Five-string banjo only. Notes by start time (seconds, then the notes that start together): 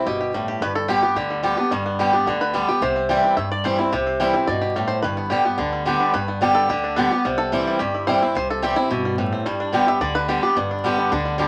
Already playing: G3 E4 G4
0.07 G4
0.21 G4
0.34 G3
0.48 G4
0.62 B4
0.75 A4
0.88 G4
1.03 B3
1.17 G4
1.30 G3
1.44 B3
1.58 D4
1.71 G3
1.86 B3
1.99 G4
2.13 D4
2.27 B3
2.41 B4
2.55 G3
2.68 G4
2.82 C5
2.96 C4
3.09 G4
3.24 E4
3.37 E5
3.52 D5
3.65 C5
3.79 E4
3.92 G4
4.06 C4
4.20 G4
4.34 E4
4.47 D5
4.62 G4
4.76 G3
4.88 C5
5.03 B4
5.17 B3
5.30 G4
5.45 B3
5.59 D4
5.73 G3
5.86 B3
6.00 D4
6.14 B4
6.28 B3
6.41 D4
6.55 A4
6.70 G4
6.84 D4
6.96 B4
7.12 B3
7.25 G3
7.38 A4
7.53 E4
7.67 G3
7.79 G4
7.94 E4
8.07 C5
8.23 C4
8.37 C5
8.50 A4
8.63 G4
8.76 E4
8.91 G4
9.05 G3
9.18 E3
9.32 C4
9.46 G3
9.60 D4
9.73 B3
9.88 E5
10.01 D5
10.15 B4
10.29 G4
10.43 D4
10.57 B3
10.71 D4
10.84 G3
10.98 B3
11.12 D4
11.25 G3
11.40 D4